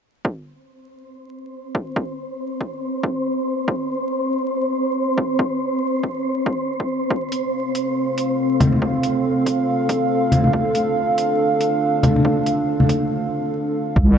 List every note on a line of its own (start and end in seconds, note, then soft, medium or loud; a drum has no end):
0.25 13.11 C4 medium
0.25 13.11 C5 medium
0.25 kick loud
1.75 kick loud
1.96 kick loud
2.61 kick medium
3.04 kick loud
3.68 kick loud
5.18 kick loud
5.39 kick loud
6.03 kick medium
6.46 kick loud
6.80 kick medium
7.10 10.50 C4 medium
7.10 13.92 A4 medium
7.10 13.92 F5 medium
7.10 kick loud
7.32 closed hi-hat medium
7.75 closed hi-hat medium
8.18 closed hi-hat medium
8.60 kick loud
8.60 closed hi-hat medium
8.60 high conga medium
8.73 high conga medium
8.82 kick loud
9.03 closed hi-hat medium
9.46 kick medium
9.46 closed hi-hat medium
9.89 kick loud
9.89 closed hi-hat medium
10.32 closed hi-hat medium
10.32 high conga medium
10.44 high conga medium
10.53 13.93 D4 medium
10.53 kick loud
10.75 closed hi-hat medium
11.18 closed hi-hat medium
11.61 closed hi-hat medium
12.03 kick loud
12.03 closed hi-hat medium
12.03 high conga medium
12.16 high conga medium
12.25 kick loud
12.46 closed hi-hat medium
12.80 high conga medium
12.89 kick medium
12.89 closed hi-hat medium
13.96 14.18 C2 loud
13.96 14.18 G3 medium
13.96 14.18 D#4 medium
13.96 14.18 C5 medium
13.96 kick loud